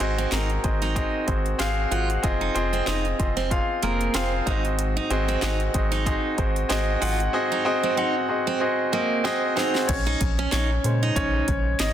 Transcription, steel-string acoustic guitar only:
0, 0, Header, 1, 2, 480
1, 0, Start_track
1, 0, Tempo, 637620
1, 1685, Time_signature, 4, 2, 24, 8
1, 8982, End_track
2, 0, Start_track
2, 0, Title_t, "Steel-string acoustic guitar"
2, 0, Program_c, 0, 25
2, 138, Note_on_c, 0, 60, 63
2, 238, Note_off_c, 0, 60, 0
2, 243, Note_on_c, 0, 63, 70
2, 371, Note_off_c, 0, 63, 0
2, 617, Note_on_c, 0, 63, 63
2, 943, Note_off_c, 0, 63, 0
2, 1440, Note_on_c, 0, 65, 65
2, 1570, Note_off_c, 0, 65, 0
2, 1815, Note_on_c, 0, 63, 60
2, 1917, Note_off_c, 0, 63, 0
2, 2054, Note_on_c, 0, 60, 62
2, 2157, Note_off_c, 0, 60, 0
2, 2161, Note_on_c, 0, 63, 67
2, 2291, Note_off_c, 0, 63, 0
2, 2535, Note_on_c, 0, 60, 74
2, 2637, Note_off_c, 0, 60, 0
2, 2881, Note_on_c, 0, 58, 67
2, 3111, Note_off_c, 0, 58, 0
2, 3121, Note_on_c, 0, 60, 68
2, 3251, Note_off_c, 0, 60, 0
2, 3362, Note_on_c, 0, 63, 65
2, 3491, Note_off_c, 0, 63, 0
2, 3739, Note_on_c, 0, 63, 72
2, 3840, Note_off_c, 0, 63, 0
2, 3977, Note_on_c, 0, 60, 66
2, 4078, Note_off_c, 0, 60, 0
2, 4081, Note_on_c, 0, 63, 70
2, 4211, Note_off_c, 0, 63, 0
2, 4454, Note_on_c, 0, 63, 66
2, 4782, Note_off_c, 0, 63, 0
2, 5282, Note_on_c, 0, 65, 65
2, 5411, Note_off_c, 0, 65, 0
2, 5658, Note_on_c, 0, 63, 63
2, 5760, Note_off_c, 0, 63, 0
2, 5897, Note_on_c, 0, 60, 61
2, 5999, Note_off_c, 0, 60, 0
2, 6002, Note_on_c, 0, 63, 73
2, 6132, Note_off_c, 0, 63, 0
2, 6377, Note_on_c, 0, 60, 79
2, 6479, Note_off_c, 0, 60, 0
2, 6722, Note_on_c, 0, 58, 73
2, 6952, Note_off_c, 0, 58, 0
2, 6962, Note_on_c, 0, 60, 77
2, 7092, Note_off_c, 0, 60, 0
2, 7202, Note_on_c, 0, 63, 69
2, 7332, Note_off_c, 0, 63, 0
2, 7577, Note_on_c, 0, 63, 71
2, 7679, Note_off_c, 0, 63, 0
2, 7819, Note_on_c, 0, 61, 72
2, 7919, Note_off_c, 0, 61, 0
2, 7922, Note_on_c, 0, 63, 77
2, 8051, Note_off_c, 0, 63, 0
2, 8301, Note_on_c, 0, 63, 67
2, 8625, Note_off_c, 0, 63, 0
2, 8982, End_track
0, 0, End_of_file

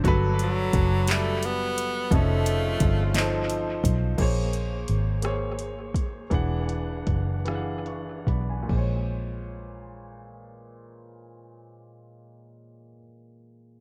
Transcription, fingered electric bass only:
0, 0, Header, 1, 2, 480
1, 0, Start_track
1, 0, Tempo, 690449
1, 32, Time_signature, 6, 3, 24, 8
1, 3392, Tempo, 716846
1, 4352, Tempo, 754717
1, 4832, Tempo, 813008
1, 5792, Tempo, 862069
1, 8637, End_track
2, 0, Start_track
2, 0, Title_t, "Fingered electric bass"
2, 0, Program_c, 0, 33
2, 36, Note_on_c, 0, 31, 117
2, 485, Note_off_c, 0, 31, 0
2, 515, Note_on_c, 0, 30, 108
2, 1444, Note_off_c, 0, 30, 0
2, 1474, Note_on_c, 0, 29, 122
2, 1924, Note_off_c, 0, 29, 0
2, 1954, Note_on_c, 0, 31, 104
2, 2643, Note_off_c, 0, 31, 0
2, 2673, Note_on_c, 0, 35, 94
2, 2887, Note_off_c, 0, 35, 0
2, 2914, Note_on_c, 0, 34, 88
2, 3366, Note_off_c, 0, 34, 0
2, 3401, Note_on_c, 0, 32, 87
2, 4329, Note_off_c, 0, 32, 0
2, 4355, Note_on_c, 0, 28, 93
2, 4808, Note_off_c, 0, 28, 0
2, 4837, Note_on_c, 0, 30, 77
2, 5521, Note_off_c, 0, 30, 0
2, 5545, Note_on_c, 0, 35, 63
2, 5770, Note_off_c, 0, 35, 0
2, 5797, Note_on_c, 0, 34, 74
2, 8166, Note_off_c, 0, 34, 0
2, 8637, End_track
0, 0, End_of_file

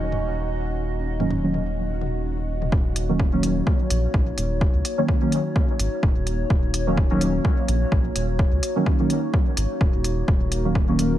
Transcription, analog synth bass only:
0, 0, Header, 1, 2, 480
1, 0, Start_track
1, 0, Key_signature, -6, "minor"
1, 0, Tempo, 472441
1, 845, Time_signature, 4, 2, 24, 8
1, 11363, End_track
2, 0, Start_track
2, 0, Title_t, "Analog synth bass"
2, 0, Program_c, 0, 38
2, 0, Note_on_c, 0, 27, 85
2, 2744, Note_off_c, 0, 27, 0
2, 2766, Note_on_c, 0, 27, 95
2, 3669, Note_off_c, 0, 27, 0
2, 3965, Note_on_c, 0, 34, 92
2, 4134, Note_off_c, 0, 34, 0
2, 4206, Note_on_c, 0, 34, 78
2, 4374, Note_off_c, 0, 34, 0
2, 4445, Note_on_c, 0, 27, 97
2, 4747, Note_off_c, 0, 27, 0
2, 4819, Note_on_c, 0, 37, 84
2, 4890, Note_off_c, 0, 37, 0
2, 5885, Note_on_c, 0, 32, 80
2, 5974, Note_off_c, 0, 32, 0
2, 6126, Note_on_c, 0, 27, 98
2, 6214, Note_off_c, 0, 27, 0
2, 6259, Note_on_c, 0, 27, 88
2, 6549, Note_off_c, 0, 27, 0
2, 6606, Note_on_c, 0, 27, 96
2, 7509, Note_off_c, 0, 27, 0
2, 7804, Note_on_c, 0, 34, 88
2, 7973, Note_off_c, 0, 34, 0
2, 8046, Note_on_c, 0, 34, 78
2, 8214, Note_off_c, 0, 34, 0
2, 8285, Note_on_c, 0, 27, 94
2, 8587, Note_off_c, 0, 27, 0
2, 8659, Note_on_c, 0, 37, 85
2, 8730, Note_off_c, 0, 37, 0
2, 9725, Note_on_c, 0, 32, 76
2, 9814, Note_off_c, 0, 32, 0
2, 9965, Note_on_c, 0, 27, 97
2, 10054, Note_off_c, 0, 27, 0
2, 10099, Note_on_c, 0, 27, 90
2, 10389, Note_off_c, 0, 27, 0
2, 10444, Note_on_c, 0, 27, 97
2, 11348, Note_off_c, 0, 27, 0
2, 11363, End_track
0, 0, End_of_file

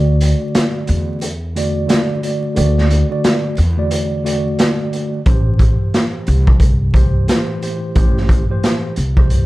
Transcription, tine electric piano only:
0, 0, Header, 1, 2, 480
1, 0, Start_track
1, 0, Tempo, 674157
1, 1826, Time_signature, 4, 2, 24, 8
1, 6735, End_track
2, 0, Start_track
2, 0, Title_t, "Tine electric piano"
2, 0, Program_c, 0, 4
2, 0, Note_on_c, 0, 50, 101
2, 0, Note_on_c, 0, 57, 91
2, 0, Note_on_c, 0, 66, 91
2, 0, Note_on_c, 0, 74, 94
2, 904, Note_off_c, 0, 50, 0
2, 907, Note_off_c, 0, 57, 0
2, 910, Note_off_c, 0, 66, 0
2, 913, Note_off_c, 0, 74, 0
2, 1103, Note_on_c, 0, 50, 94
2, 1109, Note_on_c, 0, 57, 85
2, 1115, Note_on_c, 0, 66, 85
2, 1122, Note_on_c, 0, 74, 103
2, 1316, Note_off_c, 0, 50, 0
2, 1323, Note_off_c, 0, 57, 0
2, 1324, Note_on_c, 0, 50, 78
2, 1328, Note_off_c, 0, 66, 0
2, 1331, Note_on_c, 0, 57, 68
2, 1334, Note_off_c, 0, 74, 0
2, 1337, Note_on_c, 0, 66, 69
2, 1343, Note_on_c, 0, 74, 85
2, 1560, Note_off_c, 0, 50, 0
2, 1563, Note_off_c, 0, 57, 0
2, 1566, Note_off_c, 0, 66, 0
2, 1569, Note_off_c, 0, 74, 0
2, 1583, Note_on_c, 0, 50, 68
2, 1589, Note_on_c, 0, 57, 66
2, 1596, Note_on_c, 0, 66, 67
2, 1602, Note_on_c, 0, 74, 86
2, 1804, Note_off_c, 0, 50, 0
2, 1810, Note_off_c, 0, 57, 0
2, 1812, Note_on_c, 0, 50, 93
2, 1815, Note_off_c, 0, 66, 0
2, 1818, Note_on_c, 0, 57, 81
2, 1819, Note_off_c, 0, 74, 0
2, 1825, Note_on_c, 0, 66, 92
2, 1831, Note_on_c, 0, 74, 103
2, 2168, Note_off_c, 0, 50, 0
2, 2171, Note_off_c, 0, 57, 0
2, 2175, Note_off_c, 0, 66, 0
2, 2178, Note_off_c, 0, 74, 0
2, 2203, Note_on_c, 0, 50, 91
2, 2209, Note_on_c, 0, 57, 77
2, 2215, Note_on_c, 0, 66, 87
2, 2221, Note_on_c, 0, 74, 107
2, 2520, Note_off_c, 0, 50, 0
2, 2523, Note_off_c, 0, 57, 0
2, 2526, Note_off_c, 0, 66, 0
2, 2529, Note_off_c, 0, 74, 0
2, 2678, Note_on_c, 0, 50, 86
2, 2685, Note_on_c, 0, 57, 81
2, 2691, Note_on_c, 0, 66, 78
2, 2697, Note_on_c, 0, 74, 106
2, 2997, Note_off_c, 0, 50, 0
2, 3001, Note_off_c, 0, 57, 0
2, 3004, Note_off_c, 0, 66, 0
2, 3007, Note_off_c, 0, 74, 0
2, 3013, Note_on_c, 0, 50, 84
2, 3019, Note_on_c, 0, 57, 84
2, 3026, Note_on_c, 0, 66, 88
2, 3031, Note_on_c, 0, 74, 96
2, 3693, Note_off_c, 0, 50, 0
2, 3696, Note_off_c, 0, 57, 0
2, 3699, Note_off_c, 0, 66, 0
2, 3702, Note_off_c, 0, 74, 0
2, 3738, Note_on_c, 0, 45, 83
2, 3744, Note_on_c, 0, 52, 87
2, 3750, Note_on_c, 0, 67, 89
2, 3756, Note_on_c, 0, 72, 102
2, 4742, Note_off_c, 0, 45, 0
2, 4745, Note_off_c, 0, 52, 0
2, 4748, Note_off_c, 0, 67, 0
2, 4751, Note_off_c, 0, 72, 0
2, 4928, Note_on_c, 0, 45, 90
2, 4935, Note_on_c, 0, 52, 81
2, 4941, Note_on_c, 0, 67, 85
2, 4947, Note_on_c, 0, 72, 101
2, 5162, Note_off_c, 0, 45, 0
2, 5165, Note_off_c, 0, 52, 0
2, 5168, Note_off_c, 0, 67, 0
2, 5171, Note_off_c, 0, 72, 0
2, 5173, Note_on_c, 0, 45, 77
2, 5179, Note_on_c, 0, 52, 73
2, 5185, Note_on_c, 0, 67, 71
2, 5191, Note_on_c, 0, 72, 88
2, 5404, Note_off_c, 0, 45, 0
2, 5407, Note_off_c, 0, 52, 0
2, 5410, Note_off_c, 0, 67, 0
2, 5413, Note_off_c, 0, 72, 0
2, 5419, Note_on_c, 0, 45, 73
2, 5425, Note_on_c, 0, 52, 66
2, 5431, Note_on_c, 0, 67, 70
2, 5437, Note_on_c, 0, 72, 81
2, 5645, Note_off_c, 0, 45, 0
2, 5650, Note_off_c, 0, 52, 0
2, 5653, Note_off_c, 0, 67, 0
2, 5654, Note_on_c, 0, 45, 103
2, 5656, Note_off_c, 0, 72, 0
2, 5660, Note_on_c, 0, 52, 83
2, 5666, Note_on_c, 0, 67, 97
2, 5673, Note_on_c, 0, 72, 105
2, 6009, Note_off_c, 0, 45, 0
2, 6012, Note_off_c, 0, 52, 0
2, 6015, Note_off_c, 0, 67, 0
2, 6018, Note_off_c, 0, 72, 0
2, 6042, Note_on_c, 0, 45, 92
2, 6048, Note_on_c, 0, 52, 84
2, 6054, Note_on_c, 0, 67, 85
2, 6061, Note_on_c, 0, 72, 104
2, 6359, Note_off_c, 0, 45, 0
2, 6362, Note_off_c, 0, 52, 0
2, 6365, Note_off_c, 0, 67, 0
2, 6369, Note_off_c, 0, 72, 0
2, 6518, Note_on_c, 0, 45, 97
2, 6524, Note_on_c, 0, 52, 83
2, 6531, Note_on_c, 0, 67, 77
2, 6537, Note_on_c, 0, 72, 104
2, 6735, Note_off_c, 0, 45, 0
2, 6735, Note_off_c, 0, 52, 0
2, 6735, Note_off_c, 0, 67, 0
2, 6735, Note_off_c, 0, 72, 0
2, 6735, End_track
0, 0, End_of_file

